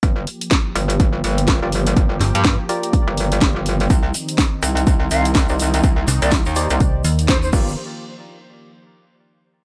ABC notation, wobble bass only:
X:1
M:4/4
L:1/16
Q:"Swing 16ths" 1/4=124
K:Gm
V:1 name="Wobble bass" clef=bass
G,,,2 z4 G,,,4 G,,,3 G,,,3 | G,,,2 z G,,2 z4 G,,,3 G,,, G,,,3 | z6 C,,4 C,,3 C,,3 | C,,2 z C,,2 E,,2 C,, z6 G,,,2 |
z16 |]